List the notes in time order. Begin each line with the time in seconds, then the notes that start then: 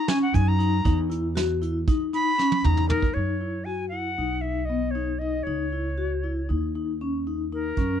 0.08 C#4 G#5, snare, closed hi-hat
0.22 F#5
0.34 F#2 D#4 G#5, kick, closed hi-hat
0.48 A#5
0.59 D#4, closed hi-hat
0.85 E2 D#4, kick, closed hi-hat
1.10 E4, closed hi-hat
1.36 F#4, snare, closed hi-hat
1.62 E4, closed hi-hat
1.88 D#4, kick, closed hi-hat
2.13 D#4 B5, closed hi-hat
2.38 C#4, snare
2.52 high tom
2.64 E2 D#4 A#5, mid tom
2.77 mid tom
2.89 D#4 A#4, floor tom
3.02 kick
3.14 F#2 D#4 C#5
3.41 E4
3.65 F#4 G#5
3.89 E4 F#5
4.18 B1 D#4
4.41 D#4 E5
4.65 D#5
4.70 B3
4.91 C#5
4.95 D#4
5.19 D#4 D#5
5.43 C#2 D#4 C#5
5.72 E4
5.98 F#4
6.24 E4
6.49 D#2 D#4
6.75 D#4
7.01 C#4
7.27 D#4
7.53 D#4 A#4
7.77 F#2 C#4, kick, closed hi-hat